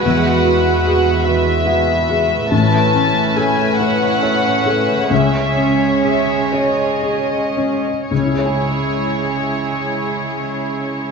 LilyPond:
<<
  \new Staff \with { instrumentName = "Violin section" } { \time 6/8 \key cis \minor \tempo 4. = 44 fis''4 fis''8 e''4. | a''4 gis''8 fis''4. | e''4 e''8 dis''4. | cis''2. | }
  \new Staff \with { instrumentName = "Violin section" } { \time 6/8 \key cis \minor << { e''2.~ | e''2. | cis''2~ cis''8. r16 | cis''2. | } \\ { b'2. | b'2. | gis'2~ gis'8. r16 | gis'2. | } >> }
  \new Staff \with { instrumentName = "Felt piano" } { \time 6/8 \key cis \minor e,8 fis'8 gis'8 b'8 fis''8 gis'8 | a,,8 cis'8 a'8 b'8 cis''8 a'8 | cis,8 cis'8 gis'8 cis''8 gis'8 cis'8 | <cis, cis e' gis' cis'' gis''>2. | }
  \new Staff \with { instrumentName = "Harp" } { \time 6/8 \key cis \minor << { <e fis' b'>8 fis'8 gis'8 b'8 gis'8 fis'8 | a,8 cis'8 a'8 b'8 a'8 cis'8 | cis8 cis'8 gis'8 cis''8 gis'8 cis'8~ | cis'2. | } \\ { r2. | r2. | r2. | <cis cis' e' gis' cis'' gis''>2. | } >> }
  \new Staff \with { instrumentName = "Viola section" } { \time 6/8 \key cis \minor << { fis'2. | cis'2.~ | cis'2~ cis'8. r16 | e'2. | } \\ { gis2. | a2. | gis2~ gis8. r16 | gis2. | } >> }
  \new Staff \with { instrumentName = "Cello section" } { \clef bass \time 6/8 \key cis \minor e,2. | a,2. | cis2~ cis8. r16 | cis2. | }
>>